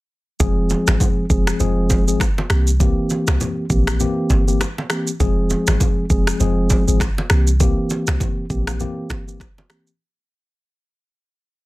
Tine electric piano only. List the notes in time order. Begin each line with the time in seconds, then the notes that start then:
0.40 F3 G#3 C4 G#4
1.30 F3 G#3 C4 G#4
1.60 F3 G#3 C4 G#4
2.07 F3 G#3 C4 G#4
2.50 E3 A#3 C4 G4
2.80 E3 A#3 C4 G4
3.70 E3 A#3 C4 G4
4.00 E3 A#3 C4 G4
4.47 E3 A#3 C4 G4
4.90 E3 A#3 C4 G4
5.20 F3 G#3 C4 G#4
6.10 F3 G#3 C4 G#4
6.40 F3 G#3 C4 G#4
6.87 F3 G#3 C4 G#4
7.30 E3 A#3 C4 G4
7.60 E3 A#3 C4 G4
8.50 E3 A#3 C4 G4
8.80 E3 A#3 C4 G4
9.27 E3 A#3 C4 G4
9.70 E3 A#3 C4 G4